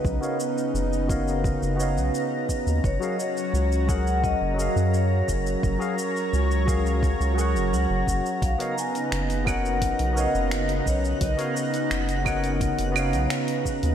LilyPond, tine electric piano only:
\new Staff \with { instrumentName = "Tine electric piano" } { \time 4/4 \key b \lydian \tempo 4 = 86 <b fis' b' cis'' dis'' eis''>16 <b fis' ais' cis'' dis'' eis''>16 r4 <b fis' ais' cis'' dis'' eis''>4 <b fis' b' cis'' dis'' eis''>4. | r16 <fis fis' gis' ais' eis''>16 r4 <fis fis' gis' ais' fis''>4 <fis fis' gis' ais' eis''>4.~ | <fis fis' gis' ais' eis''>16 <fis fis' gis' ais' eis''>16 r4 <fis fis' gis' ais' eis''>4 <fis fis' gis' ais' fis''>4. | r16 <b fis' ais' cis'' dis'' eis''>16 r4 <b fis' ais' cis'' dis'' fis''>4 <b fis' ais' cis'' dis'' eis''>4.~ |
<b fis' ais' cis'' dis'' eis''>16 <b fis' ais' cis'' dis'' eis''>16 r4 <b fis' ais' cis'' dis'' fis''>4 <b fis' b' cis'' dis'' eis''>4. | }